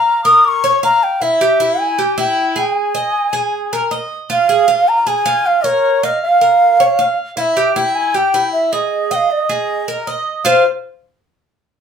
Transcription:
Already playing: cuban tres F5, bansuri A#5
0.24 cuban tres A#4, bansuri D#6
0.45 bansuri C#6 D6
0.64 cuban tres C#5
0.83 cuban tres F5, bansuri A#5
1.03 bansuri G5
1.22 cuban tres E4, bansuri E5
1.41 cuban tres G4
1.60 cuban tres E4
1.80 bansuri G#5
1.99 cuban tres G4
2.18 cuban tres E4, bansuri G5
2.56 cuban tres G#4, bansuri G5
2.72 bansuri G#5
2.95 cuban tres D#5
3.33 cuban tres G#4
3.73 cuban tres A#4
3.91 cuban tres D#5
4.30 cuban tres F4, bansuri F5
4.49 cuban tres G#4
4.68 cuban tres F4
4.88 bansuri A#5
5.07 cuban tres G#4, bansuri G#5
5.26 cuban tres F4
5.46 bansuri F5
5.64 cuban tres A#4, bansuri C#5
6.03 bansuri D#5, cuban tres F5
6.23 bansuri F5
6.41 cuban tres A#4
6.80 cuban tres C#5
6.99 cuban tres F5
7.37 cuban tres E4, bansuri E5 F5
7.57 cuban tres G4
7.76 cuban tres E4, bansuri G5
7.95 bansuri G#5
8.14 cuban tres G4, bansuri G5
8.34 cuban tres E4
8.53 bansuri E5
8.72 cuban tres G#4, bansuri D#5
9.11 cuban tres D#5, bansuri G5
9.15 bansuri F5
9.31 bansuri D#5
9.49 cuban tres G#4
9.88 cuban tres A#4
10.07 cuban tres D#5
10.45 cuban tres F4 C5 F5, bansuri F5

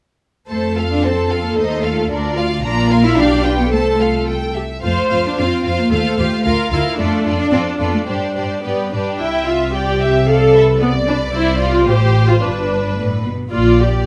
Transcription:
0.49 double bass section F2, cello section A3, violin section A4 C5 A5, viola section A4
0.77 violin section F4 A4 F5
0.91 cello section D4
1.03 cello section C4, violin section A4 C5 A5
1.31 violin section F4 A4 F5
1.46 cello section A#3
1.58 double bass section D#2, cello section A3, violin section D#4 C5 D#5
1.83 violin section F4 A4 F5
2.11 double bass section D2, violin section D4 A#4 D5, viola section F4
2.37 violin section F4 D5 F5
2.64 double bass section A#1, cello section A#3, violin section D4 D5 A#5, viola section F4
2.91 violin section F4 A#4 F5
3.05 cello section E4
3.18 double bass section B1, cello section D4, viola section G4, violin section G4 D5 F5
3.45 violin section F4 B4 G5
3.60 cello section B3
3.72 double bass section C2, cello section A3, violin section A4 C5 A5, viola section A4
4.00 violin section F4 A4 F5
4.28 violin section A4 G5
4.56 violin section G4 E5
4.83 double bass section F2, cello section A3, violin section F4 C5 F5, viola section C5
5.10 double bass section F2, violin section F4 C5 F5
5.25 cello section D4
5.37 double bass section F2, cello section C4, viola section F4, violin section F4 C5 F5
5.64 double bass section F2, violin section F4 C5 F5
5.79 cello section A#3
5.92 double bass section D#2, cello section A3, violin section F4 C5 F5, viola section A4
6.18 double bass section D#2, violin section F4 C5 F5, viola section G4
6.45 double bass section D2, violin section F4 A#4 F5, viola section F4
6.71 double bass section D2, viola section E4, violin section F4 A#4 F5
6.98 double bass section F2, cello section A3, viola section D4, violin section F4 A4 D5
7.25 double bass section F2, violin section F4 A4 D5
7.39 cello section D4
7.51 double bass section F2, cello section C4, violin section F4 A4 D5
7.79 double bass section F2, cello section B3, violin section F4 A4 D5
7.95 cello section A3
8.07 double bass section G2, cello section G3, viola section D4, violin section G4 C5 D5
8.35 double bass section G2, violin section G4 C5 D5
8.64 double bass section G2, viola section B3, violin section G4 B4 D5
8.93 double bass section G2, viola section D4, violin section G4 B4 D5
9.20 double bass section C2, cello section C3, viola section E4, violin section E5 G5
9.48 viola section F4, violin section E5
9.75 viola section G4, violin section D5 G5
10.02 violin section E5
10.29 viola section A4, violin section D5 F5
10.55 violin section B4 E5
10.82 viola section B3, violin section D5
11.08 viola section D4, violin section B4
11.34 double bass section C2, cello section C3, viola section E4, violin section C5
11.61 viola section F4
11.87 double bass section A1, cello section A2, viola section G4, violin section C5
12.28 viola section F4
12.42 double bass section G1, cello section G2, viola section D4, violin section B4
12.97 cello section A2
13.25 cello section B2
13.52 double bass section A#1, cello section A#2, viola section F4, violin section D5
13.80 viola section G4

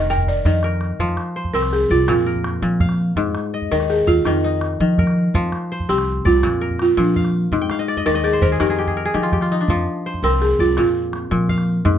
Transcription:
Already playing: upright bass F1, kora D#3 D#5 F5
0.10 kora A#4, balafon G5
0.18 calabash thump
0.27 balafon D5, calabash thump
0.45 upright bass F2, kora D#3, balafon D#5, calabash thump
0.63 kora A#4, calabash click
0.81 calabash click
0.99 upright bass F2, kora F3, calabash thump
1.08 calabash click
1.17 calabash click
1.36 kora C5
1.45 calabash thump
1.53 upright bass C2, kora C4, balafon A#4, calabash click
1.62 calabash click
1.73 balafon G#4
1.90 upright bass C2, balafon F4, kora D5, calabash thump
2.08 upright bass F2, kora A#2, balafon F4, calabash click
2.26 kora A#4
2.35 calabash thump
2.44 calabash click
2.62 kora A#2, upright bass F3
2.80 kora F5, calabash thump, calabash click
2.89 calabash click
3.16 upright bass F2, kora G#2, calabash thump
3.25 calabash click
3.35 calabash click
3.54 kora D#5
3.62 calabash thump
3.71 upright bass D#2, kora D#3, balafon A#4, calabash click
3.80 calabash click
3.90 balafon G#4
4.07 upright bass D#2, balafon F4, kora F5, calabash thump
4.25 upright bass F2, kora D#3, balafon D#4, calabash click
4.44 kora D#4
4.61 calabash click
4.80 kora D#3, upright bass F3
4.98 kora A#4, calabash thump, calabash click
5.07 calabash click
5.34 upright bass F2, kora F3, calabash thump
5.44 calabash click
5.52 calabash click
5.72 kora C5
5.80 calabash thump
5.89 upright bass C2, kora C4, balafon G4, calabash click
5.98 calabash click
6.25 upright bass C2, balafon F4, kora D5, calabash thump
6.43 upright bass F2, kora A#2, calabash click
6.61 kora A#4
6.70 calabash thump
6.79 balafon F4, calabash click
6.97 kora A#2, upright bass F3, balafon D4
7.16 kora F5, calabash thump, calabash click
7.25 calabash click
7.52 upright bass F2, kora G#2, calabash thump
7.61 kora G5
7.70 kora F5, calabash click
7.79 kora D#5
7.88 kora D5
7.97 kora D#5, calabash thump
8.06 upright bass D#2, kora D#3 D5, balafon A#4, calabash click
8.14 kora D#5, calabash click
8.24 balafon G#4, kora D5, calabash click
8.33 kora C5, calabash click
8.42 upright bass D#2, kora A#4, balafon C5, calabash thump
8.52 kora G#4
8.60 upright bass F2, kora D#3 A#4, balafon G4, calabash click
8.70 kora G#4
8.78 kora G4
8.87 kora G#4, calabash thump
8.97 kora A#4
9.05 kora G#4
9.14 kora D#3 G4, upright bass F3
9.23 kora F4, calabash click
9.32 kora G4, calabash thump, calabash click
9.41 kora F4, calabash click
9.50 kora D#4, calabash click
9.60 kora D4, calabash click
9.68 upright bass F2, kora F3, calabash thump
9.78 calabash click
10.06 kora C5
10.14 calabash thump
10.23 upright bass C2, kora C4, balafon A#4, calabash click
10.42 balafon G#4
10.59 upright bass C2, balafon F4, kora D5, calabash thump
10.77 upright bass F2, kora A#2, balafon F4, calabash click
11.13 calabash click
11.31 kora A#2, upright bass F3
11.49 kora F5, calabash thump, calabash click
11.58 calabash click
11.85 upright bass F2, kora G#2, calabash thump
11.94 calabash click

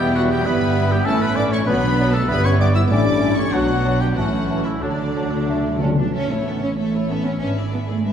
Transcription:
Already playing: double bass section E1, cello section E2, viola section G3 B3, bassoon G3, clarinet B3, violin section E4 G5, oboe G4, flute E5
0.13 french horn section F#3, oboe F#4, violin section F#5
0.29 french horn section G3, oboe G4, violin section G5
0.44 double bass section G1, cello section G2, viola section G3 B3, bassoon G3, french horn section B3, clarinet B3, violin section E4 B5, oboe B4, flute E5
0.91 french horn section G3, oboe G4, violin section G5
1.05 double bass section A1, cello section A2, bassoon E3, french horn section A3, viola section A3 C#4, clarinet C#4, violin section E4 A5, oboe A4, flute E5
1.21 french horn section B3, oboe B4, violin section B5
1.36 bassoon E3, clarinet C#4, french horn section D4, oboe D5, flute E5, violin section D6
1.52 french horn section C#4, oboe C#5, violin section C#6
1.66 double bass section B1, cello section B2, viola section F#3 B3, bassoon F#3, french horn section B3, clarinet B3, violin section B3 D4 B5, oboe B4, flute D5
1.97 bassoon F#3, clarinet B3, flute D5
2.13 french horn section A3, oboe A4, violin section A5
2.28 double bass section G1, cello section G2, viola section G3 B3, bassoon G3, clarinet B3, french horn section B3, violin section B3 E4 B5, oboe B4, flute E5
2.44 french horn section C#4, oboe C#5, violin section C#6
2.60 bassoon G3, clarinet B3, french horn section D4, oboe D5, flute E5, violin section D6
2.75 french horn section E4, oboe E5, violin section E6
2.90 double bass section A1, cello section A2, viola section G3 A3, bassoon G3, clarinet C#4, violin section C#4 E4 D6, french horn section D4, oboe D5, flute E5
3.20 bassoon G3, clarinet C#4, flute E5
3.37 french horn section C#4, oboe C#5, violin section C#6
3.51 double bass section B1, cello section B2, viola section F#3, french horn section F#3, bassoon F#3, violin section B3 D4 F#5, clarinet D4, oboe F#4, flute F#5
3.83 bassoon F#3, clarinet D4, flute F#5
4.00 french horn section G3, oboe G4, violin section G5
4.14 double bass section A1, cello section A2, viola section E3 A3, bassoon E3, french horn section F#3, clarinet C#4, violin section C#4 E4 F#5, oboe F#4, flute A5
4.48 bassoon E3, clarinet C#4, flute A5
4.62 french horn section E3, oboe E4, violin section E5
4.81 double bass section D2, cello section D3, timpani D3, french horn section D3, bassoon F#3, viola section F#3 A3, violin section D4 D5, clarinet D4, oboe D4, flute A5
4.90 timpani D3
4.99 timpani D3
5.06 timpani D3
5.14 timpani D3, bassoon F#3, clarinet D4, flute A5
5.22 timpani D3
5.30 timpani D3
5.38 timpani D3
5.46 timpani D3, bassoon A3, clarinet D4, flute A5
5.53 timpani D3
5.61 timpani D3
5.69 timpani D3
5.76 timpani D3
5.81 timpani D3, bassoon G3, cello section C#4, clarinet D4, flute A5
5.92 timpani D3
5.99 timpani D3, cello section D4
6.13 double bass section A1, cello section C#4, viola section C#4, violin section A4 E5
6.30 cello section A3, viola section E4, violin section C#5
6.45 cello section B3, viola section C#4, violin section A4 E5
6.61 cello section C#4, viola section E4, violin section C#5
6.78 cello section A3, viola section C#4, violin section A4 E5
6.94 viola section E4, violin section C#5
7.10 cello section B3, viola section C#4, violin section A4 E5
7.25 cello section C#4, viola section E4, violin section C#5
7.41 double bass section G#1, cello section C#4, viola section D4, violin section B4 E5
7.57 viola section E4, violin section G#4 D5
7.72 cello section B3, viola section D4, violin section B4 E5
7.87 cello section A3, viola section E4, violin section G#4 D5
8.03 cello section G#3, viola section D4, violin section B4 E5

